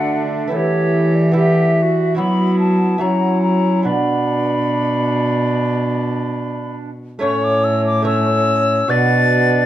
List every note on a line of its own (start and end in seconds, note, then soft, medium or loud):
0.00 0.48 D3 medium
0.00 0.50 D3 medium
0.00 1.87 A3 medium
0.00 0.47 D4 medium
0.00 0.52 D4 medium
0.00 0.48 F#4 medium
0.00 0.49 A4 medium
0.00 0.23 F#5 loud
0.48 2.14 E3 medium
0.48 1.30 B3 medium
0.48 1.31 E4 soft
0.48 1.32 G4 soft
0.52 2.20 E3 medium
0.52 0.57 A4 medium
0.52 1.17 C#5 medium
0.56 1.31 G4 medium
1.15 1.34 D5 medium
1.32 2.15 G3 medium
1.32 2.14 B3 medium
1.32 2.14 E4 medium
1.32 1.78 G4 medium
1.32 2.16 E5 medium
1.78 1.83 G4 medium
1.82 2.19 F#4 medium
2.15 2.97 F#3 medium
2.15 3.01 F#3 medium
2.15 2.97 B3 medium
2.15 2.97 E4 medium
2.15 3.00 E4 medium
2.15 2.98 F#4 medium
2.15 2.58 B5 medium
2.59 3.02 A5 medium
2.98 3.81 F#3 medium
2.98 3.86 F#3 medium
2.98 3.87 C#4 medium
2.98 3.81 E4 medium
2.98 3.87 E4 medium
2.98 3.82 F#4 medium
2.98 3.42 A#5 medium
3.43 3.84 A#5 medium
3.83 7.02 B2 medium
3.83 6.98 B2 soft
3.83 7.17 D4 soft
3.83 6.80 D4 medium
3.83 6.90 D4 medium
3.83 7.18 F#4 soft
3.83 6.76 B5 medium
7.19 8.86 A2 medium
7.19 8.01 A3 medium
7.19 8.02 C#4 medium
7.19 8.03 C#5 medium
7.19 8.02 C#5 medium
7.19 7.46 C#6 loud
7.44 7.66 D6 loud
7.64 7.85 E6 loud
7.86 8.05 D6 loud
8.02 8.86 A3 medium
8.02 8.87 C#4 medium
8.02 8.88 C#4 medium
8.02 8.87 C#5 medium
8.02 8.91 C#5 medium
8.02 8.92 E6 loud
8.88 9.66 B2 medium
8.88 9.66 D4 medium
8.88 9.66 F#4 medium
8.88 9.66 B4 medium
8.88 9.66 D5 medium
8.88 9.66 A6 loud